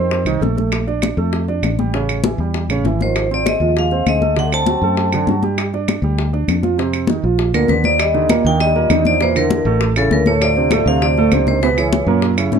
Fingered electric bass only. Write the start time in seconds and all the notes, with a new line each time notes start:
Already playing: F2
0.25 C2
0.41 A#1
1.17 F2
1.63 A1
2.38 E2
2.69 A1
2.84 G#1
3.60 D#2
4.06 D2
4.82 F#2
5.27 G2
6.02 D2
6.48 F2
7.24 A#1
7.53 D2
7.69 D#2
8.45 D#2
8.90 E2
9.65 A1
10.11 D2
10.86 D2
11.32 C#2
12.06 F#2
12.52 G#2